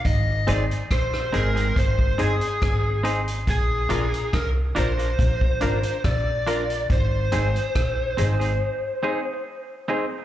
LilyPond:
<<
  \new Staff \with { instrumentName = "Lead electric guitar" } { \time 4/4 \key aes \lydian \tempo 4 = 70 ees''8 d''8 c''8 bes'8 c''8 aes'4 r8 | aes'4 bes'8 c''4. d''4 | c''2. r4 | }
  \new Staff \with { instrumentName = "Synth stab" } { \time 4/4 \key aes \lydian r8 <ees' aes' c''>16 r8. <ees' aes' c''>16 <aes' c''>16 r8 <ees' aes' c''>16 r8. <ees' aes' c''>16 r16 | r8 <d' f' bes'>16 r8. <d' f' bes'>16 <f' bes'>16 r8 <d' f' bes'>16 r8. <d' f' bes'>16 r16 | r8 <ees' aes' c''>16 r8. <ees' aes' c''>16 <aes' c''>16 r8 <ees' aes' c''>16 r8. <ees' aes' c''>16 r16 | }
  \new Staff \with { instrumentName = "Clean electric guitar" } { \time 4/4 \key aes \lydian r8 <c' ees' aes'>16 r8. <c' ees' aes'>16 <c' ees' aes'>16 r8 <c' ees' aes'>16 r8. <c' ees' aes'>16 r16 | r8 <d' f' bes'>16 r8. <d' f' bes'>16 <d' f' bes'>16 r8 <d' f' bes'>16 r8. <d' f' bes'>16 r16 | r8 <c' ees' aes'>16 r8. <c' ees' aes'>16 <c' ees' aes'>16 r8 <c' ees' aes'>16 r8. <c' ees' aes'>16 r16 | }
  \new Staff \with { instrumentName = "Upright bass" } { \clef bass \time 4/4 \key aes \lydian aes,,8 aes,,16 r16 bes,,8 aes,,8 aes,,8 g,,16 r16 aes,,4 | bes,,8 bes,,16 r16 c,8 bes,,8 bes,,8 aes,,16 r16 bes,,4 | aes,,8 aes,,16 r16 bes,,8 aes,,8 r2 | }
  \new DrumStaff \with { instrumentName = "Drums" } \drummode { \time 4/4 <hh bd>8 hh16 hh16 <hh bd ss>16 ss16 hh16 hh16 <hh bd>16 bd16 hh16 hh16 <hh bd ss>8 hh16 hh16 | <hh bd>8 hh16 hh16 <hh bd ss>8 hh16 hh16 <hh bd>16 bd16 hh16 hh16 <hh bd ss>8 hh16 hh16 | <hh bd>8 hh16 hh16 <hh bd ss>8 hh16 hh16 r4 r4 | }
>>